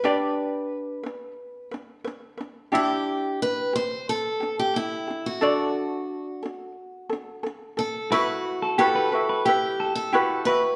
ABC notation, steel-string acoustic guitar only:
X:1
M:4/4
L:1/16
Q:1/4=89
K:Dmix
V:1 name="Steel-string acoustic guitar"
B8- B2 z6 | G4 B2 c2 A3 G E3 F- | F12 z2 A2 | F4 A4 G3 A3 B2 |]